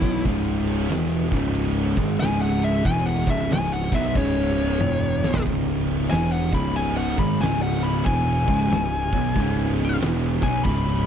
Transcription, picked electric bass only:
0, 0, Header, 1, 2, 480
1, 0, Start_track
1, 0, Key_signature, 4, "minor"
1, 0, Tempo, 650054
1, 187, Time_signature, 4, 2, 24, 8
1, 8170, End_track
2, 0, Start_track
2, 0, Title_t, "Picked electric bass"
2, 0, Program_c, 0, 34
2, 16, Note_on_c, 0, 35, 107
2, 175, Note_off_c, 0, 35, 0
2, 188, Note_on_c, 0, 25, 102
2, 639, Note_off_c, 0, 25, 0
2, 664, Note_on_c, 0, 28, 106
2, 955, Note_off_c, 0, 28, 0
2, 976, Note_on_c, 0, 25, 97
2, 1429, Note_off_c, 0, 25, 0
2, 1455, Note_on_c, 0, 32, 97
2, 1616, Note_off_c, 0, 32, 0
2, 1633, Note_on_c, 0, 25, 102
2, 2083, Note_off_c, 0, 25, 0
2, 2108, Note_on_c, 0, 28, 105
2, 2398, Note_off_c, 0, 28, 0
2, 2417, Note_on_c, 0, 25, 97
2, 2578, Note_off_c, 0, 25, 0
2, 2591, Note_on_c, 0, 25, 88
2, 2880, Note_off_c, 0, 25, 0
2, 2896, Note_on_c, 0, 35, 99
2, 3057, Note_off_c, 0, 35, 0
2, 3066, Note_on_c, 0, 25, 98
2, 3520, Note_off_c, 0, 25, 0
2, 3554, Note_on_c, 0, 28, 91
2, 3841, Note_off_c, 0, 28, 0
2, 3862, Note_on_c, 0, 35, 99
2, 4021, Note_off_c, 0, 35, 0
2, 4029, Note_on_c, 0, 25, 100
2, 4481, Note_off_c, 0, 25, 0
2, 4521, Note_on_c, 0, 28, 102
2, 4804, Note_off_c, 0, 28, 0
2, 4821, Note_on_c, 0, 25, 100
2, 5271, Note_off_c, 0, 25, 0
2, 5301, Note_on_c, 0, 32, 91
2, 5459, Note_off_c, 0, 32, 0
2, 5474, Note_on_c, 0, 25, 94
2, 5922, Note_off_c, 0, 25, 0
2, 5952, Note_on_c, 0, 28, 99
2, 6238, Note_off_c, 0, 28, 0
2, 6261, Note_on_c, 0, 25, 96
2, 6418, Note_off_c, 0, 25, 0
2, 6430, Note_on_c, 0, 25, 94
2, 6716, Note_off_c, 0, 25, 0
2, 6744, Note_on_c, 0, 35, 97
2, 6899, Note_off_c, 0, 35, 0
2, 6909, Note_on_c, 0, 25, 99
2, 7357, Note_off_c, 0, 25, 0
2, 7389, Note_on_c, 0, 28, 98
2, 7674, Note_off_c, 0, 28, 0
2, 7694, Note_on_c, 0, 35, 106
2, 7852, Note_off_c, 0, 35, 0
2, 7863, Note_on_c, 0, 25, 100
2, 8170, Note_off_c, 0, 25, 0
2, 8170, End_track
0, 0, End_of_file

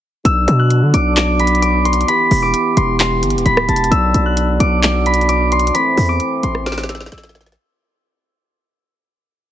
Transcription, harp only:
0, 0, Header, 1, 2, 480
1, 0, Start_track
1, 0, Tempo, 458015
1, 263, Time_signature, 4, 2, 24, 8
1, 9969, End_track
2, 0, Start_track
2, 0, Title_t, "Harp"
2, 0, Program_c, 0, 46
2, 264, Note_on_c, 0, 88, 104
2, 622, Note_on_c, 0, 90, 86
2, 985, Note_on_c, 0, 86, 81
2, 1215, Note_off_c, 0, 86, 0
2, 1219, Note_on_c, 0, 86, 96
2, 1455, Note_off_c, 0, 88, 0
2, 1465, Note_on_c, 0, 83, 72
2, 1694, Note_off_c, 0, 86, 0
2, 1698, Note_on_c, 0, 86, 91
2, 1733, Note_off_c, 0, 90, 0
2, 1938, Note_on_c, 0, 84, 84
2, 2001, Note_off_c, 0, 83, 0
2, 2182, Note_on_c, 0, 83, 107
2, 2245, Note_off_c, 0, 84, 0
2, 2536, Note_off_c, 0, 86, 0
2, 2540, Note_on_c, 0, 86, 80
2, 2901, Note_on_c, 0, 84, 81
2, 2964, Note_off_c, 0, 83, 0
2, 3137, Note_off_c, 0, 84, 0
2, 3141, Note_on_c, 0, 84, 90
2, 3620, Note_on_c, 0, 83, 92
2, 3683, Note_off_c, 0, 84, 0
2, 3817, Note_off_c, 0, 86, 0
2, 3861, Note_on_c, 0, 81, 85
2, 4100, Note_on_c, 0, 88, 101
2, 4462, Note_on_c, 0, 90, 87
2, 4821, Note_on_c, 0, 86, 79
2, 5037, Note_off_c, 0, 83, 0
2, 5057, Note_off_c, 0, 86, 0
2, 5061, Note_on_c, 0, 86, 79
2, 5291, Note_off_c, 0, 88, 0
2, 5304, Note_on_c, 0, 83, 75
2, 5379, Note_off_c, 0, 81, 0
2, 5537, Note_off_c, 0, 86, 0
2, 5541, Note_on_c, 0, 86, 83
2, 5573, Note_off_c, 0, 90, 0
2, 5786, Note_on_c, 0, 84, 82
2, 5849, Note_off_c, 0, 83, 0
2, 6019, Note_on_c, 0, 83, 99
2, 6082, Note_off_c, 0, 84, 0
2, 6377, Note_off_c, 0, 86, 0
2, 6381, Note_on_c, 0, 86, 94
2, 6744, Note_on_c, 0, 84, 83
2, 6807, Note_off_c, 0, 83, 0
2, 6978, Note_off_c, 0, 86, 0
2, 6982, Note_on_c, 0, 86, 86
2, 7223, Note_on_c, 0, 88, 74
2, 7464, Note_off_c, 0, 88, 0
2, 7468, Note_on_c, 0, 88, 82
2, 8112, Note_off_c, 0, 84, 0
2, 8259, Note_off_c, 0, 86, 0
2, 8660, Note_off_c, 0, 88, 0
2, 9969, End_track
0, 0, End_of_file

